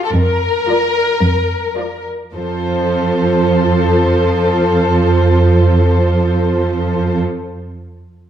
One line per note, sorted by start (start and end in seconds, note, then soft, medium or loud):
0.04 0.09 A4 medium
0.14 0.56 F2 soft
0.14 2.03 A#4 medium
0.68 1.08 F3 soft
0.68 1.08 F4 soft
0.68 1.08 D5 soft
1.21 1.65 F2 soft
1.77 2.21 F3 soft
1.77 2.21 F4 soft
1.77 2.21 D5 soft
2.35 7.19 F2 soft
2.35 7.20 F3 soft
2.35 7.20 F4 soft
2.35 7.19 A4 soft
2.35 7.19 C5 soft